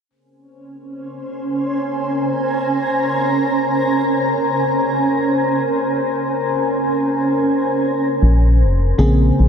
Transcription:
0.09 ambient pad C#4 A#4 C5 G#5
0.46 ambient pad C5
1.07 ambient pad G#5
1.52 ambient pad A#5
8.22 fm bass A#1, ambient pad G#4 C5 A#5
8.63 fm bass F1
8.98 fm bass A#1, fm electric piano C#3 A#3 C4 G#4
9.39 fm bass A#1

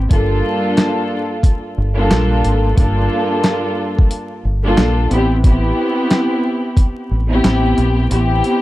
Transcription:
0.09 fingered electric bass G1, string section G2 A#3 D4 F4 A4, kick, closed hi-hat
0.77 snare, clap, closed hi-hat
1.43 kick, closed hi-hat
1.78 fingered electric bass G1
1.97 string section G2 A#3 D4 F4 A4
2.11 fingered electric bass A#1, snare, clap, closed hi-hat
2.44 fingered electric bass G#1, closed hi-hat
2.77 fingered electric bass G1, string section G2 A#3 D4 F4 A4, kick, closed hi-hat
3.44 snare, clap, closed hi-hat
3.99 kick
4.11 closed hi-hat
4.45 fingered electric bass G1
4.64 string section G2 A#3 D4 F4 A4
4.77 fingered electric bass A#1, snare, clap, closed hi-hat
5.11 fingered electric bass A1, string section B3 C4 E4 G4, closed hi-hat
5.44 string section B3 C4 E4 G4, kick, closed hi-hat
6.10 snare, clap, closed hi-hat
6.77 kick, closed hi-hat
7.11 fingered electric bass A1
7.30 string section B3 C4 E4 G4
7.44 fingered electric bass A1, snare, clap, closed hi-hat
7.78 fingered electric bass A#1, closed hi-hat
8.11 fingered electric bass A1, string section B3 C4 E4 G4, closed hi-hat
8.44 closed hi-hat

